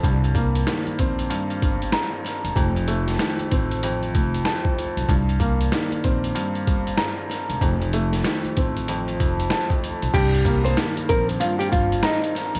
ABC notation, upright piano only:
X:1
M:4/4
L:1/8
Q:"Swing 16ths" 1/4=95
K:Cdor
V:1 name="Upright piano" clef=bass
G,, B, E, C G,,2 b2 | F,, A, E, C F,,2 a2 | G,, B, E, C G,,2 b2 | F,, A, E, C F,,2 a2 |
G,, B, E, C G,,2 b2 |]